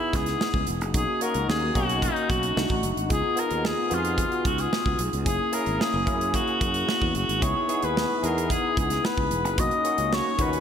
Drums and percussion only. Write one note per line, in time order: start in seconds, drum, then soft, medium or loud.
0.13 kick medium
0.13 snare soft
0.13 closed hi-hat medium
0.26 snare soft
0.26 closed hi-hat medium
0.41 snare loud
0.54 kick medium
0.67 closed hi-hat medium
0.81 closed hi-hat soft
0.94 kick loud
0.94 closed hi-hat medium
1.21 closed hi-hat medium
1.34 closed hi-hat soft
1.50 snare loud
1.75 kick medium
1.75 closed hi-hat medium
1.89 closed hi-hat medium
2.02 kick medium
2.02 closed hi-hat medium
2.16 closed hi-hat soft
2.30 kick medium
2.30 closed hi-hat medium
2.43 closed hi-hat medium
2.57 snare loud
2.69 kick medium
2.69 closed hi-hat soft
2.83 closed hi-hat medium
2.97 closed hi-hat soft
3.10 kick loud
3.10 closed hi-hat medium
3.37 closed hi-hat medium
3.50 closed hi-hat soft
3.65 snare loud
3.91 closed hi-hat medium
4.05 closed hi-hat soft
4.18 kick medium
4.18 closed hi-hat medium
4.32 closed hi-hat soft
4.45 kick medium
4.45 closed hi-hat medium
4.58 closed hi-hat medium
4.73 snare medium
4.86 kick medium
4.99 closed hi-hat medium
5.13 closed hi-hat soft
5.26 kick loud
5.26 closed hi-hat medium
5.53 closed hi-hat medium
5.66 closed hi-hat soft
5.81 snare loud
6.07 kick loud
6.07 closed hi-hat medium
6.21 closed hi-hat medium
6.34 kick medium
6.34 closed hi-hat medium
6.47 closed hi-hat soft
6.61 kick medium
6.61 closed hi-hat medium
6.74 closed hi-hat medium
6.89 snare loud
7.02 kick medium
7.15 closed hi-hat medium
7.29 closed hi-hat soft
7.42 kick loud
7.42 closed hi-hat loud
7.69 closed hi-hat medium
7.82 closed hi-hat soft
7.97 snare loud
8.24 closed hi-hat medium
8.38 closed hi-hat soft
8.50 kick medium
8.50 closed hi-hat medium
8.77 kick loud
8.77 closed hi-hat medium
8.90 snare soft
8.90 closed hi-hat medium
9.05 snare loud
9.18 kick medium
9.31 closed hi-hat medium
9.45 closed hi-hat soft
9.58 kick loud
9.58 closed hi-hat medium
9.71 closed hi-hat soft
9.85 closed hi-hat medium
9.98 closed hi-hat soft
10.13 snare loud
10.39 kick medium
10.39 closed hi-hat medium
10.53 closed hi-hat soft